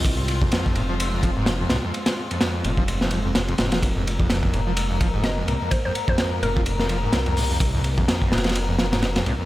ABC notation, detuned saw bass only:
X:1
M:4/4
L:1/8
Q:"Swing 16ths" 1/4=127
K:Fm
V:1 name="Detuned saw bass" clef=bass
C,,2 z F,,,4 C,, | z3 F,,,2 F,,,2 F,,,- | F,,,3 F,,,4 C,, | z3 F,,,3 C,,2- |
C,,2 z F,,,4 C,, |]